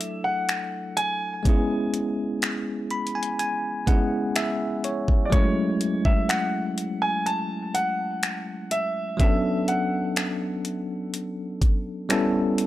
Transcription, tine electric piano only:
0.00 1.40 F#3 medium
0.00 1.41 A3 medium
0.00 1.42 D4 medium
0.00 1.42 E4 medium
0.00 1.43 A4 medium
1.43 3.82 G#3 medium
1.43 3.83 B3 medium
1.43 3.84 C#4 medium
1.47 3.84 E4 medium
1.47 3.85 G#4 medium
2.91 3.13 B5 medium
3.15 3.37 G#5 medium
3.39 3.84 G#5 medium
3.86 5.32 G#3 medium
3.86 5.32 B3 soft
3.86 5.32 C#4 medium
3.86 5.33 E4 soft
3.86 5.33 G#4 medium
3.86 4.33 F#5 medium
4.36 4.81 E5 medium
4.85 5.29 C#5 medium
5.30 9.14 F#3 medium
5.30 9.15 A3 medium
5.30 9.16 C#4 medium
5.34 9.17 G#3 medium
5.34 9.17 E4 medium
9.17 12.05 F#3 medium
9.17 12.05 B3 medium
9.17 12.06 C#4 medium
9.22 12.07 D4 medium
9.22 12.08 A4 medium
12.09 12.67 G3 medium
12.09 12.67 B3 medium
12.09 12.67 C#4 medium
12.09 12.67 E4 medium
12.09 12.67 A4 medium

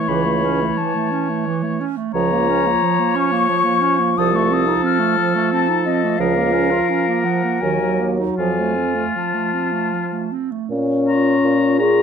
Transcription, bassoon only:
0.09 0.66 C#2 soft
2.14 2.71 C#2 soft
4.19 4.74 C2 medium
6.20 6.76 C#2 medium
7.62 8.25 D#2 soft
8.39 9.04 F2 soft
10.70 11.35 A#2 soft
11.44 12.03 A#2 soft

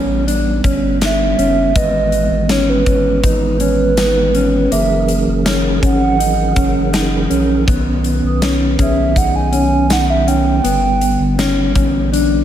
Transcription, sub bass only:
0.00 0.61 A1 medium
0.64 1.35 G1 loud
1.38 1.73 F#1 loud
1.76 2.28 G#1 loud
2.31 2.84 G#1 medium
2.86 3.22 G#1 loud
3.23 4.68 G#1 loud
4.72 5.25 F#1 loud
5.27 5.80 F#1 loud
5.83 6.53 G#1 medium
6.56 7.27 F#1 medium
7.31 7.66 A#1 medium
7.68 8.21 B1 medium
8.23 8.76 B1 loud
8.79 9.14 B1 loud
9.16 10.60 B1 loud
10.64 11.17 G1 medium
11.20 11.77 G1 medium
11.75 12.44 A1 medium

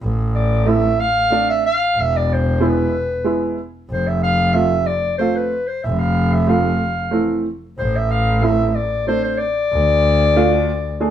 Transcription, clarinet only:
0.35 0.69 D5 medium
0.68 1.02 E5 loud
1.00 1.48 F5 loud
1.49 1.64 E5 loud
1.66 2.02 F5 loud
2.01 2.18 E5 loud
2.16 2.35 D5 medium
2.33 2.67 C5 medium
2.66 3.60 B4 medium
3.91 4.09 C5 medium
4.07 4.22 E5 medium
4.23 4.55 F5 loud
4.54 4.88 E5 loud
4.86 5.18 D5 medium
5.18 5.37 C5 medium
5.35 5.69 B4 medium
5.67 5.83 C5 medium
5.84 6.01 E5 medium
5.99 6.35 F5 medium
6.33 6.51 E5 medium
6.50 7.46 F5 medium
7.79 7.98 C5 medium
7.96 8.13 E5 medium
8.12 8.36 F5 medium
8.36 8.45 F5 medium
8.43 8.68 E5 loud
8.68 8.76 E5 medium
8.75 9.07 D5 medium
9.08 9.23 C5 medium
9.24 9.40 C5 medium
9.38 11.10 D5 loud

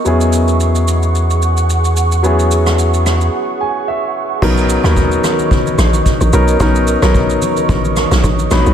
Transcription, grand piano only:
0.05 2.19 F#3 medium
0.05 2.20 B3 medium
0.05 2.20 C#4 medium
0.05 2.20 E4 medium
0.05 2.21 G#4 medium
2.23 4.38 F#3 medium
2.23 4.38 B3 medium
2.23 4.38 C#4 medium
2.23 4.39 E4 medium
2.23 4.39 G#4 medium
3.61 3.86 G#5 medium
3.88 4.39 E5 medium
4.42 4.75 F#3 medium
4.42 4.76 B3 medium
4.42 4.76 C#4 medium
4.42 4.76 D#4 medium
4.42 4.76 A#4 medium
4.84 5.71 F#3 medium
4.84 5.71 B3 medium
4.84 5.71 C#4 medium
4.84 5.71 D#4 medium
4.84 5.72 A#4 loud
6.33 6.55 F#3 medium
6.33 6.56 B3 medium
6.33 6.56 C#4 medium
6.33 6.56 D#4 medium
6.33 6.56 A#4 loud
6.60 6.93 F#3 medium
6.60 6.94 B3 medium
6.60 6.94 C#4 medium
6.60 6.94 D#4 medium
6.60 6.94 A#4 loud
7.02 7.89 F#3 medium
7.02 7.89 B3 medium
7.02 7.90 C#4 medium
7.02 7.90 D#4 medium
7.02 7.90 A#4 loud
8.51 8.73 F#3 medium
8.51 8.74 B3 medium
8.51 8.74 C#4 medium
8.51 8.74 D#4 medium
8.51 8.74 B4 medium

